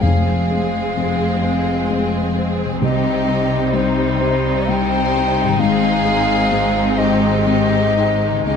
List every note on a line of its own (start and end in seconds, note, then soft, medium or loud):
0.00 0.48 F1 soft
0.00 2.79 F1 medium
0.00 0.48 F2 medium
0.00 2.78 F2 medium
0.00 1.40 F2 medium
0.00 2.77 F3 medium
0.00 2.79 G#3 medium
0.00 2.68 C4 soft
0.00 2.78 C4 soft
0.00 5.56 C4 soft
0.00 5.56 C4 medium
0.00 2.82 G#4 soft
0.00 2.78 G#4 medium
0.00 2.77 C5 soft
0.00 2.55 F5 medium
0.51 0.93 G#3 soft
0.51 0.94 C4 soft
0.51 0.93 C5 soft
0.97 1.42 F1 soft
0.97 1.42 F2 soft
1.43 1.85 G#3 soft
1.43 1.86 C4 soft
1.43 1.86 C5 soft
1.90 2.35 F1 soft
1.90 2.35 F2 soft
2.35 2.78 G#3 soft
2.35 2.78 C4 soft
2.35 2.78 C5 soft
2.65 5.54 C3 soft
2.69 6.59 C4 soft
2.74 5.59 G4 soft
2.78 3.26 C2 medium
2.78 3.26 C3 soft
2.78 4.17 C3 medium
2.78 5.59 G3 medium
2.78 5.55 C5 soft
2.82 5.56 C2 medium
2.82 5.56 C3 medium
2.82 5.56 G3 medium
2.82 8.43 D#4 medium
2.82 3.75 G4 medium
2.82 3.77 D#5 medium
3.28 3.69 G3 soft
3.28 3.70 C4 soft
3.28 3.70 C5 soft
3.73 4.19 C2 medium
3.73 4.19 C3 medium
3.73 4.67 D#4 medium
3.73 4.71 C5 medium
4.20 4.65 G3 soft
4.20 4.65 C4 soft
4.20 4.65 C5 soft
4.69 5.13 C2 medium
4.69 5.14 C3 soft
4.69 5.60 C5 medium
4.69 5.61 G5 medium
5.15 5.56 G3 soft
5.15 5.56 C4 soft
5.15 5.56 C5 soft
5.42 8.42 G#2 medium
5.47 8.56 D#3 soft
5.51 8.56 G#3 soft
5.56 6.03 G#1 medium
5.56 6.03 G#2 medium
5.56 6.96 G#4 loud
5.56 8.49 C5 soft
5.56 7.00 F5 loud
5.60 8.47 G#1 medium
5.60 8.47 G#2 medium
5.60 8.56 D#3 medium
5.60 8.56 G#3 medium
5.60 8.43 C4 medium
5.60 8.30 C4 medium
6.05 6.47 G#3 soft
6.05 6.47 D#4 soft
6.05 6.48 C5 soft
6.51 6.97 G#1 medium
6.51 6.97 G#2 medium
6.98 7.42 G#3 soft
6.98 7.42 D#4 soft
6.98 8.45 G4 medium
6.98 7.42 C5 soft
6.98 8.46 D#5 medium
7.47 7.94 G#1 soft
7.47 7.94 G#2 soft
7.96 8.43 G#3 soft
7.96 8.43 D#4 soft
7.96 8.43 C5 soft
8.29 8.56 C#3 soft
8.34 8.56 C#4 soft
8.42 8.56 C#3 soft
8.42 8.56 G4 medium
8.42 8.56 C#5 soft
8.46 8.56 C#2 soft
8.46 8.56 C#3 medium
8.46 8.56 C#4 soft
8.46 8.56 D#4 soft
8.46 8.56 D#5 medium